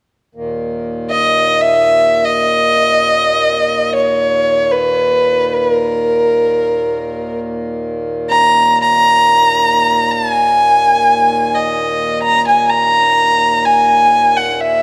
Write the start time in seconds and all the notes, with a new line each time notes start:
0.35 D#2 A#2
1.10 D#5
1.61 E5
2.25 D#5
3.95 C#5
4.71 B4
5.56 B4
5.70 A#4
8.30 A#5
8.82 A#5
10.11 A5
10.30 G#5
11.55 D#5
12.23 A#5
12.47 G#5
12.70 A#5
13.65 G#5
14.37 F#5
14.50 F#5
14.61 E5